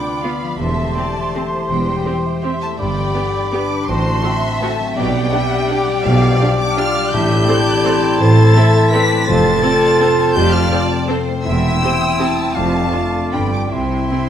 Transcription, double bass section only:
0.59 E1
1.70 E1
2.80 G1
3.89 A1
4.98 B1
6.05 B1
7.13 A1
8.20 A1
9.29 F1
10.36 F1
11.46 E1
12.57 F1
13.33 G1
13.73 C2

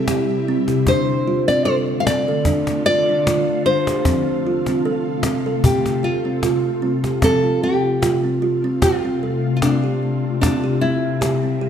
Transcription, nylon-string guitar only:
0.88 C5
1.48 D5
1.65 C5
2.00 F5
2.07 D5
2.86 D5
3.66 C5
5.65 G4
6.04 F4
7.24 A4
7.63 G4
8.47 F4
8.82 F4
9.57 F4
9.62 D4
10.41 D4
10.81 E4

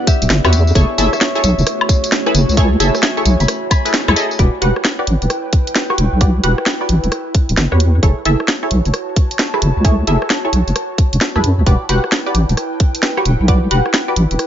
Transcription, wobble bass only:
0.21 D1
0.30 G1
0.44 E2
0.75 F#1
0.98 F#1
1.43 B1
1.58 F#1
2.34 F#1
2.49 C#2
2.80 F#1
3.25 B1
3.40 F#1
4.08 C#2
4.39 E1
4.62 E1
5.07 A1
5.22 E1
5.98 E1
6.12 B1
6.43 E1
6.89 A1
7.03 E1
7.49 D1
7.57 G1
7.72 E2
8.03 F#1
8.25 F#1
8.71 B1
8.86 F#1
9.62 F#1
9.77 C#2
10.07 F#1
10.53 B1
10.67 F#1
11.13 E1
11.35 C#2
11.44 F#2
11.58 C#2
11.66 E1
11.89 E1
12.34 A1
12.49 E1
13.25 E1
13.40 B1
13.71 E1
14.16 A1
14.31 E1

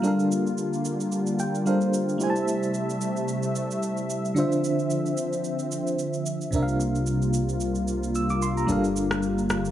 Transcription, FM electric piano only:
0.02 G3 D4 A4
0.06 A#4 F5
1.40 G5
1.66 G3 D4 A4 A#4 C5 F5
2.18 A3 E4 G4
2.22 C5 G#5
2.30 A5
4.34 D3 D4 F4
4.38 C5 E5
6.51 C3 C4 D4
6.55 A#4 E5
6.62 F5
8.16 E6
8.30 D6
8.42 C6
8.57 A#5
8.67 G3 D4 A4 A#4
8.72 F5

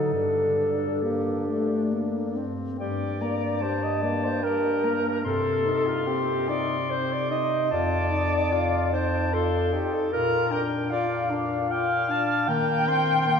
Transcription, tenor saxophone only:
Already playing: F#3
0.13 G3
1.02 A#3
1.47 A3
1.92 A#3
2.37 C4
2.79 G3
3.21 A#3
3.62 G3
4.03 A#3
4.43 G3
4.84 A#3
5.24 C4
5.65 D#4
6.07 C4
6.49 D#4
6.91 C4
7.31 D#4
7.71 F4
8.12 D#4
8.53 F4
8.93 D#4
9.33 F4
9.73 D#4
10.13 F4
10.51 D4
10.92 F4
11.30 D4
11.70 F4
12.09 D4
12.48 A#3
12.88 C4
13.27 A#3

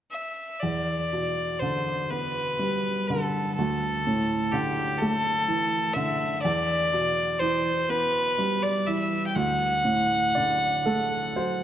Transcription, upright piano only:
0.63 E2
1.13 B2
1.62 D3
2.11 B3
2.59 G3
3.10 D3
3.58 D2
4.07 A2
4.53 D3
5.02 A3
5.48 E3
5.96 D3
6.45 E2
6.93 B2
7.41 E3
7.89 B3
8.38 G3
8.88 E3
9.36 D2
9.85 A2
10.35 D3 D5
10.86 A3 A4
11.36 F#3 C5

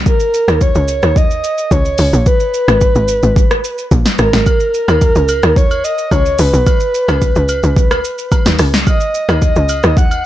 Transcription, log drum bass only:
0.48 D#2
0.75 C#2
1.03 D#2
1.71 C#2
1.99 C#2
2.13 A#1
2.68 G#1
2.95 G#1
3.23 G#1
3.91 A#1
4.19 G#1
4.33 G#1
4.88 D#2
5.16 C#2
5.43 D#2
6.11 C#2
6.39 C#2
6.53 B1
7.08 C#2
7.36 C#2
7.63 C#2
8.46 D#2
8.59 C#2
9.29 D#2
9.56 C#2
9.84 D#2

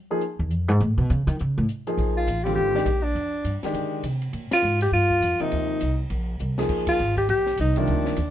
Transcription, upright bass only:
0.39 D#2
0.52 F2
0.68 G#2
0.81 A2
0.98 B2
1.10 C#3
1.27 D#3
1.41 C#3
1.58 A2
1.97 A#1
2.27 A1
2.57 G#1
2.86 A#1
3.15 F2
3.44 G2
3.63 muted upright bass stroke
3.73 D3
4.03 C3
4.33 A#2
4.51 muted upright bass stroke
4.63 G#2
4.92 G2
5.21 F2
5.40 muted upright bass stroke
5.52 D#2
5.82 C2
6.10 A#1
6.40 C2
6.69 A#1
7.00 G#1
7.29 A#1
7.59 C2
7.89 D2
8.17 D#2

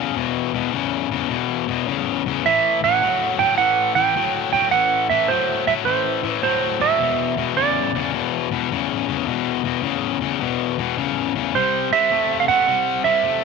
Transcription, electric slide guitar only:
2.46 E5
2.84 F#5
3.39 G5
3.58 F#5
3.95 G5
4.53 G5
4.71 F#5
5.10 E5
5.28 C5
5.67 E5
5.85 C5
6.28 B4
6.43 C5
6.81 E5
7.57 D5
11.55 C5
11.93 E5
12.40 F5
12.48 F#5
13.04 E5

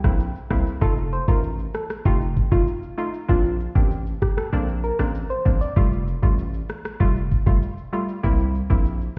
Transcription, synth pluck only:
0.04 A#3 C4 E4
0.51 A#3 C4 E4
0.81 A3 D#4 F4
1.28 A3 D#4 F4
2.05 A3 D#4 F4
2.52 A3 D#4 F4
2.98 A3 D#4 F4
3.29 A#3 C4 D4
3.75 A#3 C4 D4
4.53 A#3 C4 D4
4.99 A#3 C4 D4
5.45 A#3 C4 D4
5.76 G3 A3 F4
6.22 G3 A3 F4
7.00 G3 A3 F4
7.46 G3 A3 F4
7.93 G3 A3 F4
8.23 A#3 C4 E4
8.70 A#3 C4 E4

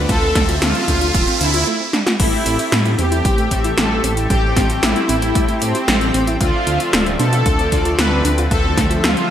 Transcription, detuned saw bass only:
0.09 D2
0.35 D2
0.62 D2
0.88 D2
1.14 D1
1.41 D2
2.20 A1
2.46 A1
2.72 A2
2.99 E2
3.25 A1
3.51 A1
3.78 A1
4.04 A1
4.30 A1
4.56 A1
4.83 A1
5.09 A1
5.35 A2
5.62 A2
5.88 A1
6.14 A1
6.41 D2
6.67 D2
6.93 D1
7.20 B2
7.46 D2
7.72 D2
7.99 D2
8.25 D2
8.51 D2
8.77 D2
9.04 D2

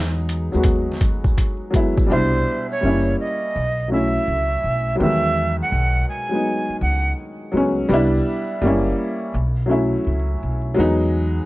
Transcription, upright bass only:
Already playing: E2
0.54 D#2
2.11 C2
2.83 F#1
3.56 B1
4.28 C#2
4.64 B1
5.00 E2
5.72 B1
6.69 muted upright bass stroke
6.81 C#2
7.54 C#2
7.89 C2
8.61 F#1
9.34 B1
10.07 C#2
10.43 B1
10.79 E2

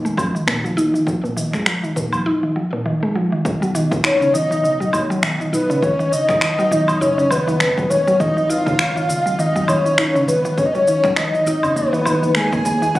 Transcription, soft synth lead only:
4.04 C#5
4.33 D#5
5.53 B4
5.83 C#5
6.12 D#5
7.01 C#5
7.31 B4
7.90 C#5
8.20 D#5
8.49 F5
9.39 D#5
9.68 C#5
10.27 B4
10.58 C#5
10.65 D#5
10.73 C#5
11.17 D#5
11.76 B4
12.36 G#5
12.96 F#5

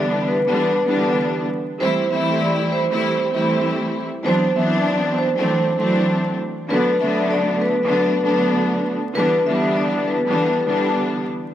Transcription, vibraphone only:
Already playing: D5
0.28 B4
1.80 C5
2.11 E5
2.41 D5
2.72 C5
4.26 C5
4.56 E5
4.87 D5
5.18 C5
6.70 B4
7.01 E5
7.30 D5
7.62 B4
9.15 B4
9.46 E5
9.77 D5
10.08 B4

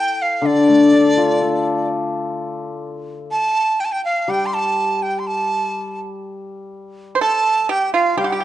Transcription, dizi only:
Already playing: G5
0.22 F5
0.46 D5
3.31 A5
3.80 G5
3.85 A5
3.92 G5
4.05 F5
4.30 G5
4.46 C6
4.55 A5
5.03 G5
5.19 C6
5.27 A5
7.21 A5
7.70 G5
7.94 F5
8.19 G5

